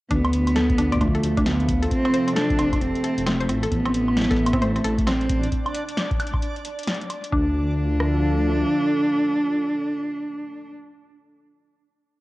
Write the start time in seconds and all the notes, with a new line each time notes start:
0.11 D2 D3 B3 D4, kick, closed hi-hat
0.25 closed hi-hat, high woodblock
0.32 F4, closed hi-hat
0.42 F3 A3
0.47 closed hi-hat, high woodblock
0.56 A4, snare, closed hi-hat
0.70 kick, closed hi-hat
0.78 D2 D4, closed hi-hat
0.92 A4 D5, kick, closed hi-hat, high woodblock
0.97 kick
1.01 A3 D4, kick, closed hi-hat, high woodblock
1.08 kick
1.15 A4, closed hi-hat
1.23 D2, closed hi-hat
1.37 D4, kick, closed hi-hat
1.46 B3, snare, closed hi-hat
1.60 closed hi-hat
1.68 kick, closed hi-hat
1.82 A4, closed hi-hat
1.91 C3 C4, kick, closed hi-hat
2.05 C4, closed hi-hat, high woodblock
2.14 C5, closed hi-hat
2.28 C4, closed hi-hat
2.36 D4 A4, snare, closed hi-hat
2.50 kick, closed hi-hat
2.59 F1 C4, closed hi-hat, high woodblock
2.73 D4, kick, closed hi-hat, high woodblock
2.81 F1 C4, closed hi-hat
2.95 closed hi-hat
3.04 A4, closed hi-hat
3.18 F1, closed hi-hat
3.26 A3 C4, snare, closed hi-hat
3.40 C5, closed hi-hat
3.49 A1 C4, closed hi-hat
3.63 A4, closed hi-hat
3.71 A1 B3 D4 D5, kick, closed hi-hat
3.81 E3
3.85 C4 E4, closed hi-hat, high woodblock
3.94 closed hi-hat
4.08 high woodblock
4.17 snare, closed hi-hat
4.21 snare
4.24 snare
4.31 A4, kick, snare, closed hi-hat
4.36 A1, snare
4.46 closed hi-hat, high woodblock
4.53 C4, kick, closed hi-hat, high woodblock
4.62 A3 C5, closed hi-hat, high woodblock
4.76 C4, closed hi-hat
4.84 A1 A4, closed hi-hat
4.98 kick, closed hi-hat
5.07 C4, snare, closed hi-hat
5.21 closed hi-hat
5.29 kick, closed hi-hat
5.43 closed hi-hat
5.52 kick, closed hi-hat
5.66 closed hi-hat, high woodblock
5.75 closed hi-hat
5.89 closed hi-hat
5.97 snare, closed hi-hat
6.11 kick, closed hi-hat
6.20 closed hi-hat, high woodblock
6.27 closed hi-hat
6.34 kick, high woodblock
6.42 closed hi-hat
6.56 closed hi-hat
6.65 closed hi-hat
6.79 closed hi-hat
6.83 closed hi-hat
6.87 snare, closed hi-hat
6.94 closed hi-hat
7.01 closed hi-hat
7.10 closed hi-hat, high woodblock
7.24 closed hi-hat
7.32 D2 D3 D4, kick
7.41 F3
7.48 A3
7.53 F4
7.61 A4
8.00 cross-stick